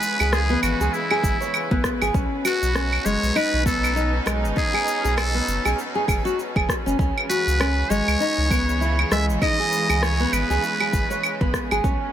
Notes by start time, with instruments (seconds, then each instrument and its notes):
Already playing: string section C#3 E3 G#3 B4, nylon-string guitar G#4, muted trumpet B4
0.03 cabasa
0.20 sub bass C#2, nylon-string guitar G#4, cabasa, claves
0.33 muted trumpet G#4, cross-stick, cabasa
0.50 nylon-string guitar B3
0.63 sub bass G#1, muted trumpet F#4, cabasa, claves
0.80 sub bass C#2, nylon-string guitar G#4, cabasa
0.93 muted trumpet E4, cabasa
1.11 nylon-string guitar G#4, claves
1.23 sub bass G#1, kick, cabasa
1.40 nylon-string guitar C#5, cabasa
1.54 cabasa, claves
1.71 sub bass G#1, nylon-string guitar B3, kick
1.84 kick, cross-stick, cabasa
2.01 sub bass G#1, nylon-string guitar G#4, cabasa, claves
2.14 sub bass B1, string section B2, nylon-string guitar C#4, kick, cabasa
2.45 string section C#4, nylon-string guitar F#4, muted trumpet F#4, cabasa, claves
2.62 sub bass B1, cabasa
2.75 nylon-string guitar C#4, string section D#4, cross-stick, cabasa
2.93 claves
3.05 sub bass F#1, nylon-string guitar G#3, muted trumpet C#5, cabasa
3.23 sub bass B1, cabasa
3.35 nylon-string guitar D#4, muted trumpet B4, cabasa, claves
3.53 sub bass B1
3.66 nylon-string guitar B3, muted trumpet A4, kick, cabasa
3.84 cabasa, claves
3.96 nylon-string guitar D#4, cabasa
4.26 sub bass B1, nylon-string guitar G#3, cross-stick, cabasa, claves
4.44 sub bass F#1, cabasa
4.56 nylon-string guitar D#4, muted trumpet G#4, kick, cabasa
4.73 nylon-string guitar G#4, claves
4.88 cabasa
5.04 sub bass B1, nylon-string guitar G#4, cabasa
5.17 muted trumpet A4, cross-stick, cabasa, claves
5.34 nylon-string guitar B3
5.48 sub bass F#1, cabasa
5.65 sub bass B1, nylon-string guitar G#4, cabasa, claves
5.79 cabasa
5.95 nylon-string guitar G#4
6.08 sub bass F#1, nylon-string guitar G#4, kick, cabasa, claves
6.25 nylon-string guitar F#4, cabasa
6.39 cabasa
6.56 sub bass F#1, nylon-string guitar G#4, kick, claves
6.69 kick, cross-stick, cabasa
6.86 sub bass F#1, nylon-string guitar C#4, cabasa
6.99 sub bass C#2, string section C#3, nylon-string guitar C#4, kick, cabasa
7.17 string section E3 G#3, claves
7.29 nylon-string guitar F#4, muted trumpet B4, cabasa
7.47 sub bass C#2, cabasa
7.60 nylon-string guitar C#4, cross-stick, cabasa, claves
7.90 sub bass G#1, nylon-string guitar G#3, muted trumpet C#5, cabasa
8.08 sub bass C#2, cabasa, claves
8.20 nylon-string guitar D#4, cabasa
8.38 sub bass C#2
8.51 nylon-string guitar B3, kick, cabasa, claves
8.69 cabasa
8.81 nylon-string guitar E4, cabasa
8.99 claves
9.11 sub bass C#2, nylon-string guitar G#3, muted trumpet E5, cross-stick, cabasa
9.29 sub bass G#1, cabasa
9.42 nylon-string guitar D#4, muted trumpet D#5, kick, cabasa, claves
9.59 nylon-string guitar G#4
9.73 cabasa
9.89 sub bass C#2, nylon-string guitar G#4, cabasa, claves
10.03 muted trumpet C#5, cross-stick, cabasa
10.20 nylon-string guitar B3
10.32 sub bass G#1, muted trumpet B4, cabasa, claves
10.50 sub bass C#2, nylon-string guitar G#4, cabasa
10.64 cabasa
10.80 nylon-string guitar G#4, claves
10.93 sub bass G#1, kick, cabasa
11.10 nylon-string guitar C#5, cabasa
11.23 cabasa, claves
11.41 sub bass G#1, nylon-string guitar B3, kick
11.54 kick, cross-stick, cabasa
11.71 sub bass G#1, nylon-string guitar G#4, cabasa, claves
11.84 sub bass B1, string section B2, nylon-string guitar C#4, kick, cabasa
11.96 string section C#4